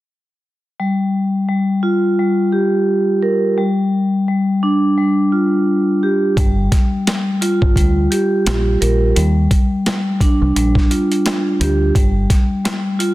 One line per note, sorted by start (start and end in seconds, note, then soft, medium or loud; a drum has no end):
0.80 1.47 G3 medium
1.49 2.18 G3 medium
1.83 3.58 F4 loud
2.19 3.57 G3 medium
2.52 3.57 G4 medium
3.22 3.58 A#4 medium
3.58 4.27 G3 medium
4.28 4.97 G3 medium
4.63 6.37 D4 medium
4.98 6.37 G3 medium
5.32 6.37 F4 medium
6.03 6.37 G4 medium
6.37 6.67 G1 loud
6.37 7.06 G3 medium
6.37 kick loud
6.37 closed hi-hat medium
6.72 kick medium
6.72 snare soft
6.72 closed hi-hat medium
7.07 7.76 G3 medium
7.07 snare loud
7.07 snare medium
7.07 closed hi-hat medium
7.41 9.16 F4 loud
7.41 closed hi-hat medium
7.62 7.75 G1 medium
7.62 kick medium
7.76 8.06 D2 medium
7.76 9.15 G3 medium
7.76 kick loud
7.76 closed hi-hat medium
8.11 9.16 G4 medium
8.11 closed hi-hat medium
8.46 8.76 A#1 medium
8.46 snare loud
8.46 snare medium
8.46 closed hi-hat medium
8.81 9.11 A#1 medium
8.81 9.16 A#4 medium
8.81 closed hi-hat medium
9.16 9.46 D#2 loud
9.16 9.85 G3 medium
9.16 closed hi-hat medium
9.51 kick medium
9.51 closed hi-hat medium
9.86 10.55 G3 medium
9.86 snare loud
9.86 snare medium
9.86 closed hi-hat medium
10.21 11.95 D4 medium
10.21 kick medium
10.21 closed hi-hat medium
10.42 10.54 C2 medium
10.56 10.86 A#1 medium
10.56 11.95 G3 medium
10.56 closed hi-hat medium
10.75 kick medium
10.75 snare soft
10.91 11.95 F4 medium
10.91 closed hi-hat medium
11.12 closed hi-hat soft
11.26 snare loud
11.26 snare medium
11.26 closed hi-hat medium
11.61 11.90 D2 medium
11.61 11.95 G4 medium
11.61 closed hi-hat medium
11.95 12.25 G1 loud
11.95 12.64 G3 medium
11.95 kick loud
11.95 closed hi-hat loud
12.30 kick loud
12.30 snare soft
12.30 closed hi-hat medium
12.65 13.14 G3 medium
12.65 snare loud
12.65 snare medium
12.65 closed hi-hat medium
12.99 13.14 F4 loud
12.99 closed hi-hat medium